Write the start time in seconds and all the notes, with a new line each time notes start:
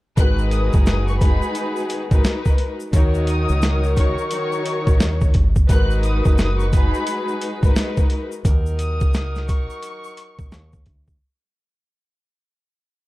0.17 G#1 D#3 G#3 B3 D#4 F#4 G#4 A#4 B4 F#6, kick, closed hi-hat, shaker
0.39 shaker
0.51 D#6, closed hi-hat, shaker
0.73 F#1, kick, shaker
0.86 D#6, snare, closed hi-hat, shaker
1.08 C#6, shaker
1.21 G#3 D#4 F#4 G#4 B4 B5, kick, closed hi-hat, shaker
1.42 shaker
1.55 closed hi-hat, shaker
1.76 shaker
1.90 closed hi-hat, shaker
2.10 G#1 G#3 D#4 F#4 A#4 B4, kick, shaker
2.24 snare, closed hi-hat, shaker
2.45 kick, shaker
2.58 closed hi-hat
2.80 shaker
2.92 D#2 D#3 F#3 D#4 F#4 A#4 C#5, kick, closed hi-hat, shaker
3.14 shaker
3.27 D#6, closed hi-hat, shaker
3.49 C#2, shaker
3.62 snare, closed hi-hat, shaker
3.84 shaker
3.96 D#3 D#4 F#4 A#4 C#5 C#6, kick, closed hi-hat, shaker
4.18 shaker
4.31 D#3 D#4 F#4 A#4 C#5, closed hi-hat, shaker
4.52 shaker
4.66 closed hi-hat, shaker
4.87 A#1, kick, shaker
5.00 D#2, snare, closed hi-hat, shaker
5.21 kick, shaker
5.34 G1, kick, closed hi-hat
5.56 kick, shaker
5.68 G#1 F#3 G#3 D#4 F#4 A#4 B4 F#6, kick, closed hi-hat, shaker
5.91 shaker
6.03 D#6, closed hi-hat, shaker
6.25 F#1, kick, shaker
6.38 D#6, snare, closed hi-hat, shaker
6.60 C#6, shaker
6.72 G#3 D#4 F#4 G#4 B4 B5, kick, closed hi-hat, shaker
6.94 shaker
7.07 closed hi-hat, shaker
7.28 shaker
7.42 closed hi-hat, shaker
7.62 G#1 G#3 D#4 F#4 A#4 B4, kick, shaker
7.76 snare, closed hi-hat, shaker
7.97 kick, shaker
8.10 closed hi-hat
8.32 shaker
8.45 D#2 F#3 D#4 A#4, kick, closed hi-hat, shaker
8.66 shaker
8.79 D#6, closed hi-hat, shaker
9.01 C#2, kick, shaker
9.14 snare, closed hi-hat, shaker
9.36 snare, shaker
9.48 C#6, kick, closed hi-hat, shaker
9.70 shaker
9.83 closed hi-hat, shaker
10.04 shaker
10.17 closed hi-hat, shaker
10.39 A#1, kick, shaker
10.52 D#2, snare, closed hi-hat, shaker
10.73 kick, shaker
10.86 D2, kick, closed hi-hat
11.08 kick, shaker